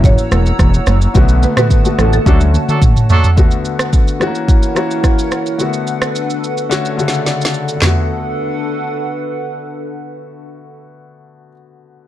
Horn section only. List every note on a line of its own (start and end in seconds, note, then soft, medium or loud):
2.26 2.39 F#3 medium
2.26 2.38 A3 medium
2.26 2.39 D4 medium
2.26 2.38 A4 medium
2.69 2.80 F#3 medium
2.69 2.80 A3 medium
2.69 2.80 D4 medium
2.69 2.80 A4 medium
3.10 3.28 F#3 medium
3.10 3.28 A3 loud
3.10 3.28 D4 medium
3.10 3.28 A4 loud